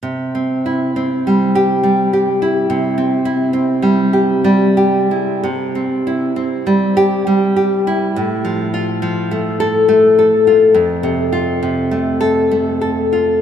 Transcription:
\new Staff \with { instrumentName = "Nylon-string guitar" } { \time 3/4 \key c \major \tempo 4 = 67 << { r4 \tuplet 3/2 { r4 g'8 } r4 | r2. | r4 \tuplet 3/2 { r4 g'8 } r4 | r4 \tuplet 3/2 { r4 a'8 } r4 |
r4 \tuplet 3/2 { r4 a'8 } r4 | } \\ { \tuplet 3/2 { c8 c'8 e'8 c'8 g4 g8 g'8 e'8 } | \tuplet 3/2 { c8 c'8 e'8 c'8 g8 g'8 g8 g'8 e'8 } | \tuplet 3/2 { c8 c'8 e'8 c'8 g4 g8 g'8 e'8 } | \tuplet 3/2 { a,8 f8 f'8 f8 a4 a8 a'8 f'8 } |
\tuplet 3/2 { f,8 c8 f'8 c8 a4 a8 a'8 f'8 } | } >> }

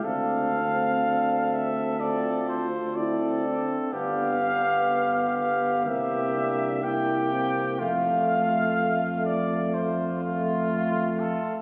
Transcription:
<<
  \new Staff \with { instrumentName = "Trumpet" } { \time 4/4 \key f \major \tempo 4 = 62 f''4. e''8 d''8 c''8 d''8 r8 | f''4. f''8 e''4 g''4 | f''4. d''8 c''8 f'4 a'8 | }
  \new Staff \with { instrumentName = "Trumpet" } { \time 4/4 \key f \major a'2 a'8 r8 a'4 | g'2 g'4 g'4 | f'4. r8 f'2 | }
  \new Staff \with { instrumentName = "Euphonium" } { \time 4/4 \key f \major d'8 c'8 d'8 r8 f'4 e'8 d'8 | d'8 b4. c'8 d'8 e'8 c'8 | a2.~ a8 r8 | }
  \new Staff \with { instrumentName = "French horn" } { \time 4/4 \key f \major c'2 c'8 r8 c'4 | b2 bes4 bes4 | a4. r8 a2 | }
  \new Staff \with { instrumentName = "Tuba" } { \clef bass \time 4/4 \key f \major d,2.~ d,8 r8 | g,,2 c,2 | f,2.~ f,8 r8 | }
>>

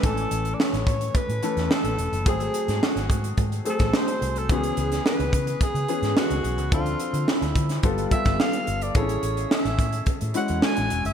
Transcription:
<<
  \new Staff \with { instrumentName = "Alto saxophone" } { \time 4/4 \key a \major \tempo 4 = 108 a'8.~ a'32 d''32 cis''4 b'4 a'4 | gis'4 fis'4 r8 a'8 bis'8. a'16 | gis'4 b'4 gis'4 fis'4 | f'4 e'4 r8 e''8 f''8. d''16 |
cis''4 e''4 r8 fis''8 gis''8. e''16 | }
  \new Staff \with { instrumentName = "Grand piano" } { \time 4/4 \key a \major <e a cis' gis''>4. r4 <e a cis' a'>4 r8 | <fis a bis gis'>4. r4 <fis a bis gis'>4 r8 | <e b cis' fis' gis'>4. r4 <e b cis' gis'>4 r8 | <f c' d' a'>4. r8 <g b f' a'>8 <g b f' a'>4 r8 |
<b cis' e' gis' a'>4. r4 <gis cis' e' fis'>4 r8 | }
  \new Staff \with { instrumentName = "Fingered electric bass" } { \clef bass \time 4/4 \key a \major a,,8 a,,8 r16 a,,16 a,8 r16 a,16 r16 e,16 r16 a,,16 e,,16 fis,,16 | gis,,8 r16 gis,16 r16 gis,,16 gis,8 gis,8 r16 a,,16 r8 bis,,8 | cis,8 cis,8 r16 cis,16 cis8 r16 cis16 r16 gis,16 r16 cis,16 b,,16 cis,16 | d,8 r16 d16 r16 d,16 d8 g,,8 r16 g,,16 r8 g,,8 |
a,,8 a,,8 r16 a,,16 a,8 r16 a,16 r16 e,16 r16 a,,16 e,,16 fis,,16 | }
  \new DrumStaff \with { instrumentName = "Drums" } \drummode { \time 4/4 <hh bd>16 hh16 hh16 hh16 sn16 <hh sn>16 <hh bd>16 hh16 <hh bd>16 hh16 hh16 <hh sn>16 sn16 hh16 hh16 hh16 | <hh bd>16 hh16 hh16 <hh sn>16 sn16 <hh sn>16 <hh bd>16 hh16 <hh bd>16 hh16 hh16 <hh bd sn>16 sn16 hh16 hh16 hh16 | <hh bd>16 hh16 hh16 <hh sn>16 sn16 hh16 <hh bd>16 hh16 <hh bd>16 hh16 hh16 <hh sn>16 sn16 hh16 hh16 hh16 | <hh bd>16 hh16 hh16 hh16 sn16 <hh sn>16 <hh bd>16 <hh sn>16 <hh bd>16 hh16 <hh bd>16 <hh bd sn>16 sn16 hh16 hh16 hh16 |
<hh bd>16 hh16 hh16 hh16 sn16 <hh sn>16 <hh bd>16 hh16 <hh bd>16 hh16 hh16 hh16 sn16 hh16 hh16 hh16 | }
>>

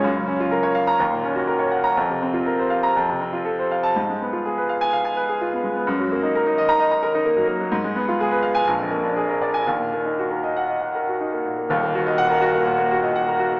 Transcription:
\new Staff \with { instrumentName = "Grand piano" } { \time 4/4 \key f \phrygian \tempo 4 = 124 << { r4. r16 bes''16 r4. r16 bes''16 | r4. r16 bes''16 r4. r16 a''16 | \key ees \minor r4. r16 aes''8 r4. r16 | r4. r16 bes''8 r4. r16 |
r4. r16 aes''16 r4. r16 aes''16 | r4. r16 ges''8 r4. r16 | r4 ges''8 r2 r8 | } \\ { ges,16 des16 des'16 f'16 bes'16 des''16 f''8 ees,16 bes,16 des'16 ges'16 bes'16 des''16 ges''8 | f,16 c16 c'16 f'16 bes'16 c''16 f''8 f,16 c16 c'16 f'16 a'16 c''16 f''8 | aes,16 aes16 ces'16 f'16 aes'16 ces''16 f''8 f''16 aes''16 ces''16 aes'16 f'16 ces'16 aes16 ces'16 | ges,16 ges16 bes16 ees'16 bes'16 ees'16 ees''8 ees''16 bes''16 bes'16 ees'16 bes16 ges16 bes16 ges16 |
aes,16 aes16 ces'16 f'16 aes'16 ces''16 f''8 bes,,16 f,16 bes16 d'16 aes'16 bes'16 d''8 | ees,16 bes,16 bes16 ees'16 ges'16 bes'16 ees''8 ees''16 ges''16 bes'16 ges'16 ees'16 bes16 bes,16 bes16 | <ees,, ees,>16 bes16 ges'16 ees''8 bes'16 ges'16 bes16 bes,16 bes16 ges'16 ees''16 ges''16 bes'16 ges'16 bes16 | } >> }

